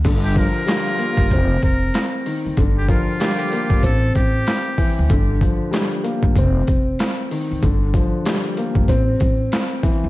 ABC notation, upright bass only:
X:1
M:4/4
L:1/16
Q:"Swing 16ths" 1/4=95
K:Gm
V:1 name="Upright bass" clef=bass
G,,,3 z4 G,,, F,,,2 F,,,2 z3 D,, | G,,,3 z4 G,,, A,,,2 A,,,2 z3 D,, | G,,,3 z4 G,,, F,,,2 F,,,2 z3 D,, | G,,,3 z4 G,,, A,,,2 A,,,2 z3 D,, |]